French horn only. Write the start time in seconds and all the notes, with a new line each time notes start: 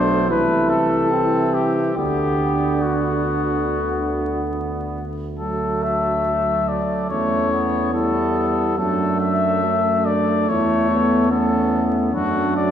Already playing: D4
0.27 E4
1.12 E4
1.95 D4
7.10 C#4
7.94 E4
8.79 D4
9.64 C#4
10.07 D4
10.49 E4
10.90 B3
11.30 C#4
12.14 D4